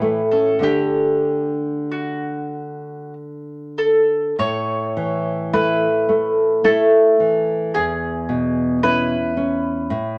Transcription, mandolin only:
0, 0, Header, 1, 2, 480
1, 0, Start_track
1, 0, Key_signature, 2, "major"
1, 0, Tempo, 1276596
1, 242, Time_signature, 3, 2, 24, 8
1, 727, Tempo, 1234568
1, 1686, Key_signature, 3, "major"
1, 1687, Tempo, 1125704
1, 2647, Tempo, 1086957
1, 4204, End_track
2, 0, Start_track
2, 0, Title_t, "Mandolin"
2, 0, Program_c, 0, 25
2, 0, Note_on_c, 0, 71, 48
2, 103, Note_off_c, 0, 71, 0
2, 118, Note_on_c, 0, 69, 33
2, 231, Note_off_c, 0, 69, 0
2, 238, Note_on_c, 0, 67, 45
2, 709, Note_off_c, 0, 67, 0
2, 720, Note_on_c, 0, 66, 31
2, 1193, Note_off_c, 0, 66, 0
2, 1445, Note_on_c, 0, 69, 38
2, 1667, Note_off_c, 0, 69, 0
2, 1683, Note_on_c, 0, 73, 52
2, 2151, Note_off_c, 0, 73, 0
2, 2170, Note_on_c, 0, 71, 53
2, 2629, Note_off_c, 0, 71, 0
2, 2642, Note_on_c, 0, 69, 49
2, 3112, Note_off_c, 0, 69, 0
2, 3128, Note_on_c, 0, 68, 50
2, 3586, Note_off_c, 0, 68, 0
2, 3609, Note_on_c, 0, 71, 57
2, 4204, Note_off_c, 0, 71, 0
2, 4204, End_track
0, 0, End_of_file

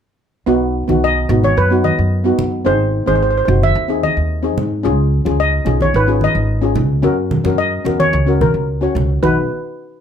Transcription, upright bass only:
0, 0, Header, 1, 2, 480
1, 0, Start_track
1, 0, Key_signature, 5, "major"
1, 0, Tempo, 547445
1, 412, Time_signature, 4, 2, 24, 8
1, 8773, End_track
2, 0, Start_track
2, 0, Title_t, "Upright bass"
2, 0, Program_c, 0, 32
2, 412, Note_on_c, 0, 35, 72
2, 723, Note_off_c, 0, 35, 0
2, 778, Note_on_c, 0, 35, 70
2, 1082, Note_off_c, 0, 35, 0
2, 1132, Note_on_c, 0, 32, 91
2, 1337, Note_off_c, 0, 32, 0
2, 1379, Note_on_c, 0, 42, 83
2, 1686, Note_off_c, 0, 42, 0
2, 1742, Note_on_c, 0, 42, 78
2, 2043, Note_off_c, 0, 42, 0
2, 2094, Note_on_c, 0, 42, 73
2, 2334, Note_on_c, 0, 32, 79
2, 2348, Note_off_c, 0, 42, 0
2, 2643, Note_off_c, 0, 32, 0
2, 2697, Note_on_c, 0, 32, 73
2, 3000, Note_off_c, 0, 32, 0
2, 3053, Note_on_c, 0, 30, 94
2, 3256, Note_off_c, 0, 30, 0
2, 3291, Note_on_c, 0, 39, 91
2, 3601, Note_off_c, 0, 39, 0
2, 3654, Note_on_c, 0, 39, 77
2, 4013, Note_off_c, 0, 39, 0
2, 4013, Note_on_c, 0, 44, 80
2, 4254, Note_on_c, 0, 37, 81
2, 4268, Note_off_c, 0, 44, 0
2, 4563, Note_off_c, 0, 37, 0
2, 4615, Note_on_c, 0, 37, 73
2, 4918, Note_off_c, 0, 37, 0
2, 4965, Note_on_c, 0, 35, 86
2, 5172, Note_off_c, 0, 35, 0
2, 5210, Note_on_c, 0, 32, 87
2, 5520, Note_off_c, 0, 32, 0
2, 5567, Note_on_c, 0, 32, 82
2, 5928, Note_on_c, 0, 37, 81
2, 5941, Note_off_c, 0, 32, 0
2, 6164, Note_on_c, 0, 42, 81
2, 6177, Note_off_c, 0, 37, 0
2, 6477, Note_off_c, 0, 42, 0
2, 6529, Note_on_c, 0, 42, 75
2, 6836, Note_off_c, 0, 42, 0
2, 6883, Note_on_c, 0, 40, 85
2, 7091, Note_off_c, 0, 40, 0
2, 7128, Note_on_c, 0, 37, 93
2, 7440, Note_off_c, 0, 37, 0
2, 7488, Note_on_c, 0, 37, 73
2, 7796, Note_off_c, 0, 37, 0
2, 7847, Note_on_c, 0, 37, 79
2, 8055, Note_off_c, 0, 37, 0
2, 8089, Note_on_c, 0, 35, 79
2, 8314, Note_off_c, 0, 35, 0
2, 8773, End_track
0, 0, End_of_file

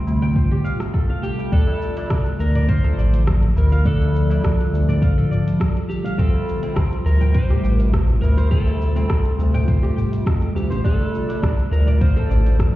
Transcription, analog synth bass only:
0, 0, Header, 1, 2, 480
1, 0, Start_track
1, 0, Tempo, 582524
1, 1255, Time_signature, 4, 2, 24, 8
1, 10513, End_track
2, 0, Start_track
2, 0, Title_t, "Analog synth bass"
2, 0, Program_c, 0, 38
2, 54, Note_on_c, 0, 38, 91
2, 493, Note_off_c, 0, 38, 0
2, 1253, Note_on_c, 0, 38, 105
2, 1353, Note_off_c, 0, 38, 0
2, 1733, Note_on_c, 0, 36, 80
2, 1833, Note_off_c, 0, 36, 0
2, 1973, Note_on_c, 0, 38, 98
2, 2412, Note_off_c, 0, 38, 0
2, 2451, Note_on_c, 0, 33, 100
2, 2891, Note_off_c, 0, 33, 0
2, 2930, Note_on_c, 0, 38, 86
2, 3611, Note_off_c, 0, 38, 0
2, 3656, Note_on_c, 0, 36, 76
2, 3754, Note_off_c, 0, 36, 0
2, 3896, Note_on_c, 0, 38, 95
2, 4334, Note_off_c, 0, 38, 0
2, 5096, Note_on_c, 0, 38, 104
2, 5194, Note_off_c, 0, 38, 0
2, 5574, Note_on_c, 0, 36, 78
2, 5673, Note_off_c, 0, 36, 0
2, 5813, Note_on_c, 0, 38, 97
2, 6253, Note_off_c, 0, 38, 0
2, 6293, Note_on_c, 0, 33, 100
2, 6732, Note_off_c, 0, 33, 0
2, 6774, Note_on_c, 0, 38, 87
2, 7453, Note_off_c, 0, 38, 0
2, 7496, Note_on_c, 0, 36, 82
2, 7594, Note_off_c, 0, 36, 0
2, 7732, Note_on_c, 0, 38, 98
2, 8172, Note_off_c, 0, 38, 0
2, 8456, Note_on_c, 0, 41, 93
2, 8643, Note_off_c, 0, 41, 0
2, 8691, Note_on_c, 0, 38, 96
2, 8823, Note_on_c, 0, 33, 89
2, 8836, Note_off_c, 0, 38, 0
2, 8909, Note_off_c, 0, 33, 0
2, 8936, Note_on_c, 0, 38, 102
2, 9034, Note_off_c, 0, 38, 0
2, 9414, Note_on_c, 0, 36, 83
2, 9513, Note_off_c, 0, 36, 0
2, 9651, Note_on_c, 0, 38, 97
2, 10091, Note_off_c, 0, 38, 0
2, 10132, Note_on_c, 0, 33, 102
2, 10513, Note_off_c, 0, 33, 0
2, 10513, End_track
0, 0, End_of_file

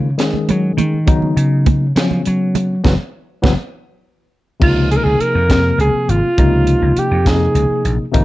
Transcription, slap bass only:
0, 0, Header, 1, 3, 480
1, 0, Start_track
1, 0, Tempo, 589565
1, 870, Time_signature, 6, 3, 24, 8
1, 6714, End_track
2, 0, Start_track
2, 0, Title_t, "Slap bass"
2, 0, Program_c, 0, 36
2, 0, Note_on_c, 0, 49, 85
2, 119, Note_off_c, 0, 49, 0
2, 409, Note_on_c, 0, 54, 85
2, 623, Note_off_c, 0, 54, 0
2, 628, Note_on_c, 0, 51, 87
2, 1076, Note_off_c, 0, 51, 0
2, 1112, Note_on_c, 0, 49, 94
2, 1558, Note_off_c, 0, 49, 0
2, 1594, Note_on_c, 0, 53, 89
2, 1825, Note_off_c, 0, 53, 0
2, 1849, Note_on_c, 0, 54, 79
2, 2286, Note_off_c, 0, 54, 0
2, 2315, Note_on_c, 0, 30, 98
2, 2402, Note_off_c, 0, 30, 0
2, 2800, Note_on_c, 0, 30, 104
2, 2884, Note_off_c, 0, 30, 0
2, 3757, Note_on_c, 0, 37, 91
2, 4044, Note_off_c, 0, 37, 0
2, 4112, Note_on_c, 0, 37, 84
2, 4207, Note_off_c, 0, 37, 0
2, 4354, Note_on_c, 0, 41, 71
2, 4643, Note_off_c, 0, 41, 0
2, 4708, Note_on_c, 0, 37, 73
2, 4805, Note_off_c, 0, 37, 0
2, 4954, Note_on_c, 0, 32, 82
2, 5049, Note_off_c, 0, 32, 0
2, 5197, Note_on_c, 0, 37, 91
2, 5485, Note_off_c, 0, 37, 0
2, 5551, Note_on_c, 0, 37, 78
2, 5647, Note_off_c, 0, 37, 0
2, 5790, Note_on_c, 0, 41, 79
2, 6080, Note_off_c, 0, 41, 0
2, 6144, Note_on_c, 0, 37, 79
2, 6242, Note_off_c, 0, 37, 0
2, 6389, Note_on_c, 0, 34, 84
2, 6486, Note_off_c, 0, 34, 0
2, 6633, Note_on_c, 0, 32, 93
2, 6714, Note_off_c, 0, 32, 0
2, 6714, End_track
3, 0, Start_track
3, 0, Title_t, "Muted slap bass strokes"
3, 4231, Note_on_c, 9, 29, 35
3, 4312, Note_off_c, 9, 29, 0
3, 6714, End_track
0, 0, End_of_file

